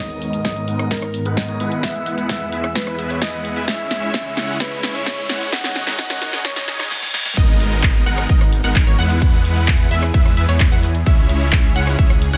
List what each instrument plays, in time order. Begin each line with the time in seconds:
0.00 analog synth pad G#2 D#3 B3 A#4, supersaw synth G#3 B3 D#4 A#4 D#5, soft synth lead D#5, riser
0.10 closed hi-hat
0.22 open hi-hat, shaker
0.33 closed hi-hat, shaker
0.45 soft synth lead D#5, kick, snare, closed hi-hat, shaker
0.56 closed hi-hat
0.68 supersaw synth G#3 B3 D#4 A#4 F#5, open hi-hat, shaker
0.79 cross-stick, closed hi-hat, shaker
0.91 supersaw synth G#3 B3 D#4 A#4 D#5, soft synth lead A#4, kick, snare, closed hi-hat, shaker
1.02 cross-stick, closed hi-hat
1.14 open hi-hat, shaker
1.26 supersaw synth G#3 B3 D#4 A#4 F#5, soft synth lead B4, closed hi-hat, shaker
1.37 soft synth lead D#5, kick, snare, closed hi-hat, shaker
1.49 supersaw synth G#3 B3 D#4 A#4 C#5, closed hi-hat, shaker
1.60 supersaw synth G#3 B3 E4 B4 F#5, open hi-hat, shaker
1.72 closed hi-hat, shaker
1.83 analog synth pad E2 E3 G#4, soft synth lead E5, kick, snare, closed hi-hat, shaker
1.95 closed hi-hat
2.06 open hi-hat, shaker
2.18 closed hi-hat, shaker
2.29 soft synth lead E5, kick, snare, closed hi-hat, shaker
2.41 closed hi-hat
2.52 supersaw synth G#3 B3 E4 B4 E5, open hi-hat, shaker
2.64 cross-stick, closed hi-hat, shaker
2.75 supersaw synth G#3 B3 E4 B4 E5, soft synth lead B4, kick, snare, closed hi-hat, shaker
2.87 cross-stick, closed hi-hat
2.98 supersaw synth G#3 B3 E4 B4 E5, open hi-hat, shaker
3.10 soft synth lead C#5, closed hi-hat, shaker
3.22 supersaw synth G#3 B3 E4 B4 E5, soft synth lead D#5, kick, snare, closed hi-hat, shaker
3.33 supersaw synth G#3 B3 E4 B4 F#5, closed hi-hat, shaker
3.45 open hi-hat, shaker
3.56 supersaw synth G#3 B3 E4 B4 E5, closed hi-hat, shaker
3.68 analog synth pad C#2 C#3 E4, supersaw synth G#3 C#4 E4 C#5 E5, soft synth lead E5, kick, snare, closed hi-hat, shaker
3.79 closed hi-hat
3.91 snare, open hi-hat, shaker
4.02 closed hi-hat, shaker
4.14 soft synth lead E5, kick, snare, closed hi-hat, shaker
4.26 closed hi-hat
4.37 supersaw synth G#3 C#4 E4 C#5 F#5, snare, open hi-hat, shaker
4.49 closed hi-hat, shaker
4.60 supersaw synth G#3 C#4 E4 C#5 E5, soft synth lead B4, kick, snare, closed hi-hat, shaker
4.72 closed hi-hat
4.83 snare, open hi-hat, shaker
4.95 soft synth lead C#5, closed hi-hat, shaker
5.06 soft synth lead C#5, kick, snare, closed hi-hat, shaker
5.18 closed hi-hat, shaker
5.29 supersaw synth G#3 C#4 E4 C#5 F#5, snare, open hi-hat, shaker
5.41 closed hi-hat, shaker
5.52 analog synth pad D#2 D#3 F#4 A#4, supersaw synth G#3 C#4 D#4 C#5 D#5, soft synth lead F#5, kick, snare, closed hi-hat, shaker
5.64 snare, closed hi-hat
5.75 snare, open hi-hat, shaker
5.87 snare, closed hi-hat, shaker
5.99 supersaw synth G#3 C#4 D#4 C#5 D#5, soft synth lead F#5, kick, snare, closed hi-hat, shaker
6.10 snare, closed hi-hat, shaker
6.22 snare, open hi-hat, shaker
6.33 snare, closed hi-hat, shaker
6.45 supersaw synth G#3 C#4 D#4 C#5 D#5, soft synth lead C#5, kick, snare, closed hi-hat, reverse cymbal, shaker
6.56 snare, closed hi-hat, shaker
6.68 supersaw synth G#3 C#4 D#4 C#5 D#5, snare, open hi-hat, shaker
6.79 soft synth lead D#5, snare, closed hi-hat, shaker
6.91 snare
7.02 snare
7.14 snare
7.26 snare
7.37 detuned saw bass G#1, supersaw synth G#3 B3 D#4 A#4 D#5, analog synth pad G#3 B3 D#4 A#4, synth pluck D#5, kick, closed hi-hat, ride, crash, impact, shaker
7.49 closed hi-hat, shaker
7.60 open hi-hat
7.72 closed hi-hat, shaker
7.83 kick, clap, closed hi-hat, ride, shaker
7.95 closed hi-hat, shaker
8.06 detuned saw bass G#1, supersaw synth G#3 B3 D#4 A#4 F#5, synth pluck F#5, open hi-hat
8.18 cross-stick, closed hi-hat, shaker
8.29 detuned saw bass G#1, supersaw synth G#3 B3 D#4 A#4 D#5, synth pluck D#5, kick, closed hi-hat, ride, shaker
8.41 cross-stick, closed hi-hat, shaker
8.52 open hi-hat
8.64 detuned saw bass G#1, supersaw synth G#3 B3 D#4 A#4 F#5, synth pluck F#5, closed hi-hat, shaker
8.76 kick, clap, closed hi-hat, ride, shaker
8.87 detuned saw bass G#1, supersaw synth G#3 B3 D#4 A#4 C#5, synth pluck C#5, closed hi-hat, shaker
8.99 detuned saw bass E2, supersaw synth G#3 B3 E4 B4 F#5, synth pluck F#5, open hi-hat
9.10 closed hi-hat, shaker
9.22 analog synth pad E3 E4 G#4, kick, closed hi-hat, ride, shaker
9.33 closed hi-hat, shaker
9.45 open hi-hat
9.56 closed hi-hat, shaker
9.68 kick, clap, closed hi-hat, ride, shaker
9.80 closed hi-hat, shaker
9.91 detuned saw bass E2, supersaw synth G#3 B3 E4 B4 E5, synth pluck E5, open hi-hat
10.03 cross-stick, closed hi-hat, shaker
10.14 detuned saw bass E2, supersaw synth G#3 B3 E4 B4 E5, synth pluck E5, kick, closed hi-hat, ride, shaker
10.26 cross-stick, closed hi-hat, shaker
10.37 detuned saw bass E2, supersaw synth G#3 B3 E4 B4 E5, synth pluck E5, open hi-hat
10.48 detuned saw bass E2, supersaw synth G#3 B3 E4 B4 C#5, synth pluck C#5, closed hi-hat, shaker
10.60 kick, clap, closed hi-hat, ride, shaker
10.72 detuned saw bass E2, supersaw synth G#3 B3 E4 B4 F#5, synth pluck F#5, closed hi-hat, shaker
10.83 open hi-hat
10.95 closed hi-hat, shaker
11.06 detuned saw bass C#2, analog synth pad C#3 C#4 G#4, supersaw synth G#3 C#4 E4 C#5 E5, synth pluck E5, kick, closed hi-hat, ride, shaker
11.18 closed hi-hat, shaker
11.29 open hi-hat
11.41 closed hi-hat, shaker
11.52 kick, clap, closed hi-hat, ride, shaker
11.64 closed hi-hat, shaker
11.75 detuned saw bass C#2, supersaw synth G#3 C#4 E4 C#5 F#5, synth pluck F#5, open hi-hat
11.87 cross-stick, closed hi-hat, shaker
11.99 detuned saw bass C#2, supersaw synth G#3 C#4 E4 C#5 E5, synth pluck E5, kick, closed hi-hat, ride, shaker
12.10 cross-stick, closed hi-hat, shaker
12.22 open hi-hat
12.33 detuned saw bass C#2, supersaw synth G#3 C#4 E4 C#5 F#5, synth pluck F#5, closed hi-hat, shaker